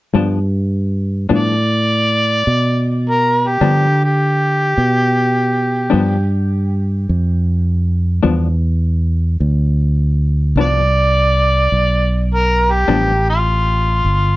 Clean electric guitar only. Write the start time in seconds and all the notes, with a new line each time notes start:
0.14 G2 F3 B3 D4
1.29 G2 F3 B3 D4
3.61 G2 F3 B3 D4
5.90 G2 F3 B3 D4
8.23 G2 F3 B3 D4
10.57 G2 F3 B3 D4
12.88 G2 F3 B3 D4